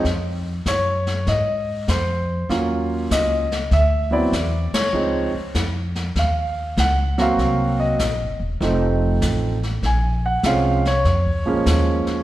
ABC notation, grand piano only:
X:1
M:4/4
L:1/8
Q:"Swing" 1/4=98
K:Bbm
V:1 name="Grand piano"
z2 d2 e2 c2 | z2 e2 =e =d2 _d- | d z3 f2 g f- | f e2 z4 z |
a g f d4- d |]
V:2 name="Grand piano"
z8 | [G,B,DF]3 z2 [^F,=B,C=E] z2 | [F,A,CE] z6 [G,B,CG]- | [G,B,CG]2 z2 [F,=A,CE]3 z |
z2 [F,A,CD] z2 [F,A,B,D]3 |]